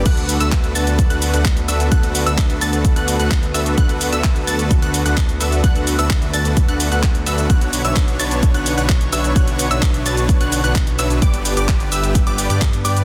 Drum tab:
CC |x---------------|----------------|----------------|----------------|
HH |xxoxxxoxxxoxxxox|xxoxxxoxxxoxxxox|xxoxxxoxxxoxxxox|xxoxxxoxxxoxxxox|
SH |xxxxxxxxxxxxxxxx|xxxxxxxxxxxxxxxx|xxxxxxxxxxxxxxxx|xxxxxxxxxxxxxxxx|
CP |----x-------x---|----x-------x---|----x-------x---|----x-------x---|
BD |o---o---o---o---|o---o---o---o---|o---o---o---o---|o---o---o---o---|

CC |----------------|----------------|----------------|
HH |xxoxxxoxxxoxxxox|xxoxxxoxxxoxxxox|xxoxxxoxxxoxxxox|
SH |xxxxxxxxxxxxxxxx|xxxxxxxxxxxxxxxx|xxxxxxxxxxxxxxxx|
CP |----x-------x---|----x-------x---|----x-------x---|
BD |o---o---o---o---|o---o---o---o---|o---o---o---o---|